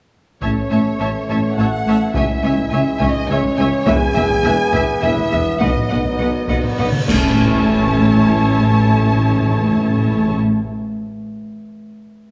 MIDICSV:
0, 0, Header, 1, 14, 480
1, 0, Start_track
1, 0, Tempo, 574713
1, 351, Time_signature, 3, 2, 24, 8
1, 3708, Tempo, 587084
1, 6108, Tempo, 576923
1, 10216, End_track
2, 0, Start_track
2, 0, Title_t, "Violin section"
2, 0, Program_c, 0, 48
2, 356, Note_on_c, 0, 81, 35
2, 423, Note_off_c, 0, 81, 0
2, 589, Note_on_c, 0, 81, 36
2, 655, Note_off_c, 0, 81, 0
2, 839, Note_on_c, 0, 81, 36
2, 906, Note_off_c, 0, 81, 0
2, 1079, Note_on_c, 0, 81, 37
2, 1145, Note_off_c, 0, 81, 0
2, 1318, Note_on_c, 0, 81, 39
2, 1385, Note_off_c, 0, 81, 0
2, 1563, Note_on_c, 0, 81, 41
2, 1630, Note_off_c, 0, 81, 0
2, 1796, Note_on_c, 0, 80, 48
2, 1863, Note_off_c, 0, 80, 0
2, 2025, Note_on_c, 0, 80, 44
2, 2091, Note_off_c, 0, 80, 0
2, 2255, Note_on_c, 0, 80, 43
2, 2321, Note_off_c, 0, 80, 0
2, 2494, Note_on_c, 0, 80, 51
2, 2561, Note_off_c, 0, 80, 0
2, 2727, Note_on_c, 0, 80, 51
2, 2794, Note_off_c, 0, 80, 0
2, 2975, Note_on_c, 0, 80, 57
2, 3042, Note_off_c, 0, 80, 0
2, 3220, Note_on_c, 0, 76, 61
2, 3287, Note_off_c, 0, 76, 0
2, 3458, Note_on_c, 0, 76, 62
2, 3524, Note_off_c, 0, 76, 0
2, 3701, Note_on_c, 0, 76, 60
2, 3767, Note_off_c, 0, 76, 0
2, 3938, Note_on_c, 0, 76, 56
2, 4003, Note_off_c, 0, 76, 0
2, 4180, Note_on_c, 0, 76, 57
2, 4246, Note_off_c, 0, 76, 0
2, 4416, Note_on_c, 0, 76, 51
2, 4482, Note_off_c, 0, 76, 0
2, 4645, Note_on_c, 0, 78, 52
2, 4710, Note_off_c, 0, 78, 0
2, 4888, Note_on_c, 0, 78, 45
2, 4953, Note_off_c, 0, 78, 0
2, 5129, Note_on_c, 0, 78, 44
2, 5195, Note_off_c, 0, 78, 0
2, 5386, Note_on_c, 0, 78, 43
2, 5452, Note_off_c, 0, 78, 0
2, 5626, Note_on_c, 0, 78, 46
2, 5691, Note_off_c, 0, 78, 0
2, 5869, Note_on_c, 0, 81, 60
2, 8583, Note_off_c, 0, 81, 0
2, 10216, End_track
3, 0, Start_track
3, 0, Title_t, "Violin section"
3, 0, Program_c, 1, 48
3, 355, Note_on_c, 1, 73, 50
3, 1283, Note_off_c, 1, 73, 0
3, 1302, Note_on_c, 1, 78, 64
3, 1787, Note_off_c, 1, 78, 0
3, 1796, Note_on_c, 1, 76, 54
3, 2495, Note_off_c, 1, 76, 0
3, 2523, Note_on_c, 1, 75, 68
3, 2754, Note_off_c, 1, 75, 0
3, 2757, Note_on_c, 1, 73, 69
3, 3227, Note_off_c, 1, 73, 0
3, 3237, Note_on_c, 1, 80, 85
3, 4188, Note_off_c, 1, 80, 0
3, 4196, Note_on_c, 1, 76, 78
3, 4670, Note_off_c, 1, 76, 0
3, 4683, Note_on_c, 1, 75, 60
3, 5619, Note_off_c, 1, 75, 0
3, 5866, Note_on_c, 1, 81, 58
3, 8579, Note_off_c, 1, 81, 0
3, 10216, End_track
4, 0, Start_track
4, 0, Title_t, "Viola section"
4, 0, Program_c, 2, 48
4, 348, Note_on_c, 2, 73, 37
4, 350, Note_on_c, 2, 76, 37
4, 415, Note_off_c, 2, 73, 0
4, 417, Note_off_c, 2, 76, 0
4, 591, Note_on_c, 2, 76, 34
4, 594, Note_on_c, 2, 73, 36
4, 658, Note_off_c, 2, 76, 0
4, 660, Note_off_c, 2, 73, 0
4, 830, Note_on_c, 2, 76, 38
4, 836, Note_on_c, 2, 73, 38
4, 896, Note_off_c, 2, 76, 0
4, 903, Note_off_c, 2, 73, 0
4, 1086, Note_on_c, 2, 73, 39
4, 1088, Note_on_c, 2, 76, 38
4, 1153, Note_off_c, 2, 73, 0
4, 1155, Note_off_c, 2, 76, 0
4, 1331, Note_on_c, 2, 73, 40
4, 1334, Note_on_c, 2, 76, 39
4, 1398, Note_off_c, 2, 73, 0
4, 1401, Note_off_c, 2, 76, 0
4, 1570, Note_on_c, 2, 73, 40
4, 1570, Note_on_c, 2, 76, 40
4, 1637, Note_off_c, 2, 73, 0
4, 1637, Note_off_c, 2, 76, 0
4, 1805, Note_on_c, 2, 76, 44
4, 1807, Note_on_c, 2, 73, 44
4, 1871, Note_off_c, 2, 76, 0
4, 1874, Note_off_c, 2, 73, 0
4, 2036, Note_on_c, 2, 73, 43
4, 2043, Note_on_c, 2, 76, 45
4, 2103, Note_off_c, 2, 73, 0
4, 2109, Note_off_c, 2, 76, 0
4, 2275, Note_on_c, 2, 73, 46
4, 2275, Note_on_c, 2, 76, 49
4, 2341, Note_off_c, 2, 73, 0
4, 2342, Note_off_c, 2, 76, 0
4, 2516, Note_on_c, 2, 73, 54
4, 2518, Note_on_c, 2, 76, 50
4, 2583, Note_off_c, 2, 73, 0
4, 2585, Note_off_c, 2, 76, 0
4, 2761, Note_on_c, 2, 76, 54
4, 2766, Note_on_c, 2, 73, 54
4, 2828, Note_off_c, 2, 76, 0
4, 2833, Note_off_c, 2, 73, 0
4, 3006, Note_on_c, 2, 73, 50
4, 3008, Note_on_c, 2, 76, 54
4, 3073, Note_off_c, 2, 73, 0
4, 3075, Note_off_c, 2, 76, 0
4, 3234, Note_on_c, 2, 76, 60
4, 3236, Note_on_c, 2, 71, 60
4, 3301, Note_off_c, 2, 76, 0
4, 3303, Note_off_c, 2, 71, 0
4, 3477, Note_on_c, 2, 71, 55
4, 3480, Note_on_c, 2, 76, 53
4, 3544, Note_off_c, 2, 71, 0
4, 3547, Note_off_c, 2, 76, 0
4, 3710, Note_on_c, 2, 71, 58
4, 3711, Note_on_c, 2, 76, 58
4, 3775, Note_off_c, 2, 71, 0
4, 3777, Note_off_c, 2, 76, 0
4, 3963, Note_on_c, 2, 76, 62
4, 3964, Note_on_c, 2, 71, 61
4, 4028, Note_off_c, 2, 76, 0
4, 4029, Note_off_c, 2, 71, 0
4, 4193, Note_on_c, 2, 71, 56
4, 4193, Note_on_c, 2, 76, 54
4, 4259, Note_off_c, 2, 71, 0
4, 4259, Note_off_c, 2, 76, 0
4, 4429, Note_on_c, 2, 76, 49
4, 4433, Note_on_c, 2, 71, 45
4, 4494, Note_off_c, 2, 76, 0
4, 4499, Note_off_c, 2, 71, 0
4, 4663, Note_on_c, 2, 75, 48
4, 4667, Note_on_c, 2, 71, 48
4, 4728, Note_off_c, 2, 75, 0
4, 4732, Note_off_c, 2, 71, 0
4, 4907, Note_on_c, 2, 75, 42
4, 4908, Note_on_c, 2, 71, 43
4, 4972, Note_off_c, 2, 75, 0
4, 4973, Note_off_c, 2, 71, 0
4, 5151, Note_on_c, 2, 71, 45
4, 5157, Note_on_c, 2, 75, 43
4, 5216, Note_off_c, 2, 71, 0
4, 5222, Note_off_c, 2, 75, 0
4, 5382, Note_on_c, 2, 71, 46
4, 5384, Note_on_c, 2, 75, 48
4, 5448, Note_off_c, 2, 71, 0
4, 5449, Note_off_c, 2, 75, 0
4, 5629, Note_on_c, 2, 71, 46
4, 5629, Note_on_c, 2, 75, 47
4, 5694, Note_off_c, 2, 71, 0
4, 5694, Note_off_c, 2, 75, 0
4, 5866, Note_on_c, 2, 64, 52
4, 5866, Note_on_c, 2, 73, 52
4, 8579, Note_off_c, 2, 64, 0
4, 8580, Note_off_c, 2, 73, 0
4, 10216, End_track
5, 0, Start_track
5, 0, Title_t, "French horn section"
5, 0, Program_c, 3, 60
5, 353, Note_on_c, 3, 61, 57
5, 1282, Note_off_c, 3, 61, 0
5, 1301, Note_on_c, 3, 66, 61
5, 1777, Note_off_c, 3, 66, 0
5, 1798, Note_on_c, 3, 64, 64
5, 2510, Note_off_c, 3, 64, 0
5, 2527, Note_on_c, 3, 63, 65
5, 2756, Note_off_c, 3, 63, 0
5, 2780, Note_on_c, 3, 61, 73
5, 3235, Note_on_c, 3, 68, 108
5, 3247, Note_off_c, 3, 61, 0
5, 4168, Note_off_c, 3, 68, 0
5, 4191, Note_on_c, 3, 64, 88
5, 4668, Note_off_c, 3, 64, 0
5, 4669, Note_on_c, 3, 63, 74
5, 5611, Note_off_c, 3, 63, 0
5, 5886, Note_on_c, 3, 57, 65
5, 8599, Note_off_c, 3, 57, 0
5, 10216, End_track
6, 0, Start_track
6, 0, Title_t, "Trombone section"
6, 0, Program_c, 4, 61
6, 347, Note_on_c, 4, 57, 40
6, 351, Note_on_c, 4, 52, 41
6, 1757, Note_off_c, 4, 57, 0
6, 1788, Note_on_c, 4, 56, 47
6, 3197, Note_off_c, 4, 52, 0
6, 3222, Note_on_c, 4, 52, 69
6, 3227, Note_on_c, 4, 59, 65
6, 3228, Note_off_c, 4, 56, 0
6, 4632, Note_off_c, 4, 52, 0
6, 4660, Note_on_c, 4, 54, 50
6, 5729, Note_off_c, 4, 54, 0
6, 5729, Note_off_c, 4, 59, 0
6, 5868, Note_on_c, 4, 61, 53
6, 5874, Note_on_c, 4, 52, 56
6, 8582, Note_off_c, 4, 61, 0
6, 8587, Note_off_c, 4, 52, 0
6, 10216, End_track
7, 0, Start_track
7, 0, Title_t, "Timpani"
7, 0, Program_c, 5, 47
7, 353, Note_on_c, 5, 45, 50
7, 1042, Note_off_c, 5, 45, 0
7, 5880, Note_on_c, 5, 45, 70
7, 5929, Note_off_c, 5, 45, 0
7, 5929, Note_on_c, 5, 45, 65
7, 5981, Note_off_c, 5, 45, 0
7, 5981, Note_on_c, 5, 45, 71
7, 6032, Note_off_c, 5, 45, 0
7, 6032, Note_on_c, 5, 45, 66
7, 6084, Note_off_c, 5, 45, 0
7, 6085, Note_on_c, 5, 45, 71
7, 6136, Note_off_c, 5, 45, 0
7, 6136, Note_on_c, 5, 45, 65
7, 6188, Note_off_c, 5, 45, 0
7, 6193, Note_on_c, 5, 45, 76
7, 6246, Note_off_c, 5, 45, 0
7, 6247, Note_on_c, 5, 45, 70
7, 6299, Note_off_c, 5, 45, 0
7, 6301, Note_on_c, 5, 45, 66
7, 6353, Note_off_c, 5, 45, 0
7, 6354, Note_on_c, 5, 45, 68
7, 6407, Note_off_c, 5, 45, 0
7, 6407, Note_on_c, 5, 45, 69
7, 6458, Note_off_c, 5, 45, 0
7, 6458, Note_on_c, 5, 45, 69
7, 6510, Note_off_c, 5, 45, 0
7, 6513, Note_on_c, 5, 45, 77
7, 6561, Note_off_c, 5, 45, 0
7, 6561, Note_on_c, 5, 45, 70
7, 6614, Note_off_c, 5, 45, 0
7, 6617, Note_on_c, 5, 45, 76
7, 6669, Note_off_c, 5, 45, 0
7, 6669, Note_on_c, 5, 45, 61
7, 6722, Note_off_c, 5, 45, 0
7, 6728, Note_on_c, 5, 45, 71
7, 6781, Note_off_c, 5, 45, 0
7, 6782, Note_on_c, 5, 45, 64
7, 6831, Note_off_c, 5, 45, 0
7, 6831, Note_on_c, 5, 45, 78
7, 6883, Note_off_c, 5, 45, 0
7, 6883, Note_on_c, 5, 45, 68
7, 6936, Note_off_c, 5, 45, 0
7, 6938, Note_on_c, 5, 45, 70
7, 6990, Note_off_c, 5, 45, 0
7, 6991, Note_on_c, 5, 45, 73
7, 7043, Note_off_c, 5, 45, 0
7, 7045, Note_on_c, 5, 45, 82
7, 7098, Note_off_c, 5, 45, 0
7, 7100, Note_on_c, 5, 45, 71
7, 7149, Note_off_c, 5, 45, 0
7, 7149, Note_on_c, 5, 45, 77
7, 7201, Note_off_c, 5, 45, 0
7, 7203, Note_on_c, 5, 45, 66
7, 7255, Note_off_c, 5, 45, 0
7, 7258, Note_on_c, 5, 45, 70
7, 7310, Note_off_c, 5, 45, 0
7, 7316, Note_on_c, 5, 45, 69
7, 7369, Note_off_c, 5, 45, 0
7, 7371, Note_on_c, 5, 45, 74
7, 7423, Note_off_c, 5, 45, 0
7, 7425, Note_on_c, 5, 45, 69
7, 7477, Note_off_c, 5, 45, 0
7, 7477, Note_on_c, 5, 45, 72
7, 7528, Note_off_c, 5, 45, 0
7, 7528, Note_on_c, 5, 45, 68
7, 7580, Note_off_c, 5, 45, 0
7, 7580, Note_on_c, 5, 45, 71
7, 7633, Note_off_c, 5, 45, 0
7, 7633, Note_on_c, 5, 45, 67
7, 7686, Note_off_c, 5, 45, 0
7, 7688, Note_on_c, 5, 45, 71
7, 7740, Note_off_c, 5, 45, 0
7, 7743, Note_on_c, 5, 45, 68
7, 7793, Note_off_c, 5, 45, 0
7, 7793, Note_on_c, 5, 45, 73
7, 7845, Note_off_c, 5, 45, 0
7, 7846, Note_on_c, 5, 45, 69
7, 7894, Note_off_c, 5, 45, 0
7, 7894, Note_on_c, 5, 45, 73
7, 7944, Note_off_c, 5, 45, 0
7, 7944, Note_on_c, 5, 45, 72
7, 7995, Note_off_c, 5, 45, 0
7, 7995, Note_on_c, 5, 45, 74
7, 8048, Note_off_c, 5, 45, 0
7, 8048, Note_on_c, 5, 45, 71
7, 8096, Note_off_c, 5, 45, 0
7, 8096, Note_on_c, 5, 45, 77
7, 8149, Note_off_c, 5, 45, 0
7, 8149, Note_on_c, 5, 45, 69
7, 8201, Note_off_c, 5, 45, 0
7, 8201, Note_on_c, 5, 45, 74
7, 8254, Note_off_c, 5, 45, 0
7, 8260, Note_on_c, 5, 45, 66
7, 8312, Note_off_c, 5, 45, 0
7, 8312, Note_on_c, 5, 45, 71
7, 8363, Note_off_c, 5, 45, 0
7, 8363, Note_on_c, 5, 45, 69
7, 8416, Note_off_c, 5, 45, 0
7, 8416, Note_on_c, 5, 45, 71
7, 8465, Note_off_c, 5, 45, 0
7, 8465, Note_on_c, 5, 45, 63
7, 8518, Note_off_c, 5, 45, 0
7, 8519, Note_on_c, 5, 45, 72
7, 8570, Note_off_c, 5, 45, 0
7, 8570, Note_on_c, 5, 45, 64
7, 8622, Note_off_c, 5, 45, 0
7, 10216, End_track
8, 0, Start_track
8, 0, Title_t, "Cello section"
8, 0, Program_c, 6, 48
8, 352, Note_on_c, 6, 45, 46
8, 419, Note_off_c, 6, 45, 0
8, 593, Note_on_c, 6, 45, 38
8, 660, Note_off_c, 6, 45, 0
8, 830, Note_on_c, 6, 45, 42
8, 897, Note_off_c, 6, 45, 0
8, 1078, Note_on_c, 6, 45, 40
8, 1144, Note_off_c, 6, 45, 0
8, 1325, Note_on_c, 6, 45, 44
8, 1392, Note_off_c, 6, 45, 0
8, 1558, Note_on_c, 6, 45, 44
8, 1625, Note_off_c, 6, 45, 0
8, 1796, Note_on_c, 6, 37, 56
8, 1863, Note_off_c, 6, 37, 0
8, 2039, Note_on_c, 6, 37, 47
8, 2106, Note_off_c, 6, 37, 0
8, 2280, Note_on_c, 6, 37, 54
8, 2347, Note_off_c, 6, 37, 0
8, 2514, Note_on_c, 6, 37, 54
8, 2580, Note_off_c, 6, 37, 0
8, 2748, Note_on_c, 6, 37, 59
8, 2815, Note_off_c, 6, 37, 0
8, 2993, Note_on_c, 6, 37, 55
8, 3059, Note_off_c, 6, 37, 0
8, 3228, Note_on_c, 6, 40, 72
8, 3294, Note_off_c, 6, 40, 0
8, 3474, Note_on_c, 6, 40, 59
8, 3540, Note_off_c, 6, 40, 0
8, 3709, Note_on_c, 6, 40, 71
8, 3774, Note_off_c, 6, 40, 0
8, 3945, Note_on_c, 6, 40, 61
8, 4011, Note_off_c, 6, 40, 0
8, 4185, Note_on_c, 6, 40, 60
8, 4250, Note_off_c, 6, 40, 0
8, 4425, Note_on_c, 6, 40, 50
8, 4490, Note_off_c, 6, 40, 0
8, 4659, Note_on_c, 6, 47, 61
8, 4725, Note_off_c, 6, 47, 0
8, 4907, Note_on_c, 6, 47, 49
8, 4972, Note_off_c, 6, 47, 0
8, 5146, Note_on_c, 6, 47, 52
8, 5211, Note_off_c, 6, 47, 0
8, 5392, Note_on_c, 6, 47, 47
8, 5458, Note_off_c, 6, 47, 0
8, 5625, Note_on_c, 6, 47, 47
8, 5691, Note_off_c, 6, 47, 0
8, 5876, Note_on_c, 6, 45, 51
8, 8590, Note_off_c, 6, 45, 0
8, 10216, End_track
9, 0, Start_track
9, 0, Title_t, "Double bass section"
9, 0, Program_c, 7, 48
9, 353, Note_on_c, 7, 33, 39
9, 419, Note_off_c, 7, 33, 0
9, 595, Note_on_c, 7, 33, 44
9, 662, Note_off_c, 7, 33, 0
9, 829, Note_on_c, 7, 33, 40
9, 896, Note_off_c, 7, 33, 0
9, 1070, Note_on_c, 7, 33, 42
9, 1136, Note_off_c, 7, 33, 0
9, 1311, Note_on_c, 7, 33, 45
9, 1378, Note_off_c, 7, 33, 0
9, 1554, Note_on_c, 7, 33, 42
9, 1621, Note_off_c, 7, 33, 0
9, 1789, Note_on_c, 7, 37, 49
9, 1855, Note_off_c, 7, 37, 0
9, 2033, Note_on_c, 7, 37, 51
9, 2100, Note_off_c, 7, 37, 0
9, 2267, Note_on_c, 7, 37, 51
9, 2334, Note_off_c, 7, 37, 0
9, 2509, Note_on_c, 7, 37, 60
9, 2575, Note_off_c, 7, 37, 0
9, 2747, Note_on_c, 7, 37, 63
9, 2814, Note_off_c, 7, 37, 0
9, 2984, Note_on_c, 7, 37, 61
9, 3051, Note_off_c, 7, 37, 0
9, 3226, Note_on_c, 7, 28, 68
9, 3293, Note_off_c, 7, 28, 0
9, 3472, Note_on_c, 7, 28, 72
9, 3538, Note_off_c, 7, 28, 0
9, 3708, Note_on_c, 7, 28, 66
9, 3774, Note_off_c, 7, 28, 0
9, 3949, Note_on_c, 7, 28, 66
9, 4014, Note_off_c, 7, 28, 0
9, 4191, Note_on_c, 7, 28, 63
9, 4256, Note_off_c, 7, 28, 0
9, 4438, Note_on_c, 7, 28, 56
9, 4503, Note_off_c, 7, 28, 0
9, 4673, Note_on_c, 7, 35, 53
9, 4738, Note_off_c, 7, 35, 0
9, 4919, Note_on_c, 7, 35, 49
9, 4984, Note_off_c, 7, 35, 0
9, 5149, Note_on_c, 7, 35, 52
9, 5214, Note_off_c, 7, 35, 0
9, 5393, Note_on_c, 7, 35, 50
9, 5458, Note_off_c, 7, 35, 0
9, 5637, Note_on_c, 7, 35, 53
9, 5702, Note_off_c, 7, 35, 0
9, 5889, Note_on_c, 7, 33, 56
9, 8603, Note_off_c, 7, 33, 0
9, 10216, End_track
10, 0, Start_track
10, 0, Title_t, "Tuba"
10, 0, Program_c, 8, 58
10, 349, Note_on_c, 8, 33, 42
10, 446, Note_off_c, 8, 33, 0
10, 593, Note_on_c, 8, 33, 42
10, 690, Note_off_c, 8, 33, 0
10, 834, Note_on_c, 8, 33, 42
10, 930, Note_off_c, 8, 33, 0
10, 1067, Note_on_c, 8, 33, 43
10, 1165, Note_off_c, 8, 33, 0
10, 1313, Note_on_c, 8, 33, 46
10, 1409, Note_off_c, 8, 33, 0
10, 1561, Note_on_c, 8, 33, 42
10, 1655, Note_off_c, 8, 33, 0
10, 1794, Note_on_c, 8, 37, 53
10, 1889, Note_off_c, 8, 37, 0
10, 2039, Note_on_c, 8, 37, 53
10, 2133, Note_off_c, 8, 37, 0
10, 2275, Note_on_c, 8, 37, 59
10, 2369, Note_off_c, 8, 37, 0
10, 2511, Note_on_c, 8, 37, 58
10, 2606, Note_off_c, 8, 37, 0
10, 2750, Note_on_c, 8, 37, 65
10, 2846, Note_off_c, 8, 37, 0
10, 2995, Note_on_c, 8, 37, 59
10, 3091, Note_off_c, 8, 37, 0
10, 3234, Note_on_c, 8, 28, 71
10, 3330, Note_off_c, 8, 28, 0
10, 3475, Note_on_c, 8, 28, 66
10, 3570, Note_off_c, 8, 28, 0
10, 3715, Note_on_c, 8, 28, 71
10, 3808, Note_off_c, 8, 28, 0
10, 3950, Note_on_c, 8, 28, 65
10, 4045, Note_off_c, 8, 28, 0
10, 4190, Note_on_c, 8, 28, 66
10, 4285, Note_off_c, 8, 28, 0
10, 4427, Note_on_c, 8, 28, 53
10, 4523, Note_off_c, 8, 28, 0
10, 4668, Note_on_c, 8, 35, 57
10, 4764, Note_off_c, 8, 35, 0
10, 4906, Note_on_c, 8, 35, 52
10, 5002, Note_off_c, 8, 35, 0
10, 5143, Note_on_c, 8, 35, 56
10, 5241, Note_off_c, 8, 35, 0
10, 5390, Note_on_c, 8, 35, 51
10, 5486, Note_off_c, 8, 35, 0
10, 5628, Note_on_c, 8, 35, 52
10, 5724, Note_off_c, 8, 35, 0
10, 5859, Note_on_c, 8, 33, 55
10, 8572, Note_off_c, 8, 33, 0
10, 10216, End_track
11, 0, Start_track
11, 0, Title_t, "Cymbal swell"
11, 0, Program_c, 10, 119
11, 4669, Note_on_c, 10, 60, 45
11, 5872, Note_off_c, 10, 60, 0
11, 10216, End_track
12, 0, Start_track
12, 0, Title_t, "Impact"
12, 0, Program_c, 11, 103
12, 5875, Note_on_c, 11, 60, 55
12, 7548, Note_off_c, 11, 60, 0
12, 10216, End_track
13, 0, Start_track
13, 0, Title_t, "Taiko and cinematic ensemble drums"
13, 346, Note_on_c, 9, 41, 48
13, 429, Note_off_c, 9, 41, 0
13, 1789, Note_on_c, 9, 41, 81
13, 1873, Note_off_c, 9, 41, 0
13, 2151, Note_on_c, 9, 41, 66
13, 2234, Note_off_c, 9, 41, 0
13, 2504, Note_on_c, 9, 41, 71
13, 2588, Note_off_c, 9, 41, 0
13, 2863, Note_on_c, 9, 41, 71
13, 2947, Note_off_c, 9, 41, 0
13, 3228, Note_on_c, 9, 41, 93
13, 3311, Note_off_c, 9, 41, 0
13, 3593, Note_on_c, 9, 41, 74
13, 3676, Note_off_c, 9, 41, 0
13, 3946, Note_on_c, 9, 41, 71
13, 4028, Note_off_c, 9, 41, 0
13, 4302, Note_on_c, 9, 41, 73
13, 4384, Note_off_c, 9, 41, 0
13, 4663, Note_on_c, 9, 41, 91
13, 4745, Note_off_c, 9, 41, 0
13, 4783, Note_on_c, 9, 45, 44
13, 4864, Note_off_c, 9, 45, 0
13, 5022, Note_on_c, 9, 41, 66
13, 5103, Note_off_c, 9, 41, 0
13, 5383, Note_on_c, 9, 41, 69
13, 5464, Note_off_c, 9, 41, 0
13, 5504, Note_on_c, 9, 45, 44
13, 5585, Note_off_c, 9, 45, 0
13, 5629, Note_on_c, 9, 45, 53
13, 5711, Note_off_c, 9, 45, 0
13, 5745, Note_on_c, 9, 47, 75
13, 5827, Note_off_c, 9, 47, 0
13, 5866, Note_on_c, 9, 41, 86
13, 5948, Note_off_c, 9, 41, 0
13, 10216, End_track
14, 0, Start_track
14, 0, Title_t, "Drums"
14, 5877, Note_on_c, 9, 35, 67
14, 5877, Note_on_c, 9, 49, 65
14, 5959, Note_off_c, 9, 35, 0
14, 5959, Note_off_c, 9, 49, 0
14, 10216, End_track
0, 0, End_of_file